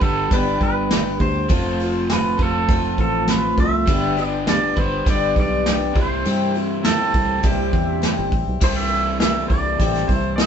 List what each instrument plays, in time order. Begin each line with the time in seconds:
Already playing: twelve-string acoustic guitar G3 B3 D4 G4
0.00 fingered electric bass G1, overdriven electric guitar G3 B3 D4 B4, pedal steel guitar A4, kick, open hi-hat
0.31 fingered electric bass G1, twelve-string acoustic guitar G2 D3 G3 B3 D4 G4, pedal steel guitar B4, kick, open hi-hat
0.61 fingered electric bass G1, pedal steel guitar B4, kick, open hi-hat
0.90 twelve-string acoustic guitar G3 B3 D4 G4, snare, open hi-hat
1.19 fingered electric bass D2, twelve-string acoustic guitar G3 B3 D4 G4, pedal steel guitar C5, kick, open hi-hat
1.49 fingered electric bass F1, overdriven electric guitar F3 A3 C4 F4 A4, twelve-string acoustic guitar F3 C4 F4 A4, kick, open hi-hat
1.79 twelve-string acoustic guitar C4 F4 A4, open hi-hat
2.09 twelve-string acoustic guitar F3 C4 F4 A4, pedal steel guitar B4, snare, open hi-hat
2.38 fingered electric bass F1, overdriven electric guitar F3 A3 C4 F4 A4, kick, open hi-hat
2.43 pedal steel guitar A4
2.68 fingered electric bass F1, twelve-string acoustic guitar F3 C4 F4 A4, kick, open hi-hat
2.98 fingered electric bass A1, pedal steel guitar A4, kick, open hi-hat
3.27 twelve-string acoustic guitar F3 C4 F4 A4, pedal steel guitar B4, snare, open hi-hat
3.57 fingered electric bass C2, twelve-string acoustic guitar C4 F4 A4, pedal steel guitar E5, kick, open hi-hat
3.86 fingered electric bass G1, twelve-string acoustic guitar G2 D3 G3 B3 D4 G4, overdriven electric guitar G3 B3 D4 B4, kick, open hi-hat
4.17 twelve-string acoustic guitar G3 B3 D4 G4, open hi-hat
4.25 pedal steel guitar D5
4.47 twelve-string acoustic guitar G3 B3 D4 G4, pedal steel guitar D5, snare, open hi-hat
4.76 fingered electric bass G1, overdriven electric guitar G3 B3 D4 B4, pedal steel guitar C5, kick, open hi-hat
5.06 fingered electric bass G1, twelve-string acoustic guitar G2 D3 G3 B3 D4 G4, kick, open hi-hat
5.10 pedal steel guitar D5
5.36 fingered electric bass B1, kick, open hi-hat
5.40 pedal steel guitar D5
5.66 twelve-string acoustic guitar G3 B3 D4 G4, snare, open hi-hat
5.93 fingered electric bass C2, overdriven electric guitar C3 E3 G3 C4 E4 C5, twelve-string acoustic guitar E4 G4, kick, open hi-hat
5.98 twelve-string acoustic guitar C4, pedal steel guitar C5
6.25 fingered electric bass G2, twelve-string acoustic guitar C3 G3 C4 E4 G4, open hi-hat
6.55 twelve-string acoustic guitar C4 E4 G4, open hi-hat
6.83 overdriven electric guitar C3 E3 G3 C4 E4, twelve-string acoustic guitar G3 C4 E4 G4, pedal steel guitar A4, snare, open hi-hat
6.87 overdriven electric guitar C5
7.14 fingered electric bass C2, kick, open hi-hat
7.43 fingered electric bass C2, twelve-string acoustic guitar C3 G3 C4 E4 G4, pedal steel guitar G4, kick, open hi-hat
7.73 fingered electric bass E2, kick, open hi-hat
8.02 twelve-string acoustic guitar G3 C4 E4 G4, snare, open hi-hat
8.19 fingered electric bass G1
8.32 fingered electric bass A1, kick, open hi-hat
8.48 fingered electric bass B1
8.61 fingered electric bass C2, overdriven electric guitar C3 E3 G3 E4 G4, twelve-string acoustic guitar C3 G3 C4 E4 A4, pedal steel guitar C5, kick, crash
8.76 pedal steel guitar E5
8.91 open hi-hat
9.20 twelve-string acoustic guitar G3 C4 E4 A4, pedal steel guitar E5, snare, open hi-hat
9.48 fingered electric bass C2, pedal steel guitar D5, kick, open hi-hat
9.80 fingered electric bass A1, twelve-string acoustic guitar C3 G3 C4 E4 A4, kick, open hi-hat
9.94 snare
10.08 fingered electric bass C2, twelve-string acoustic guitar A4, pedal steel guitar C5, kick, open hi-hat
10.12 twelve-string acoustic guitar C4 E4
10.36 pedal steel guitar E5, snare, open hi-hat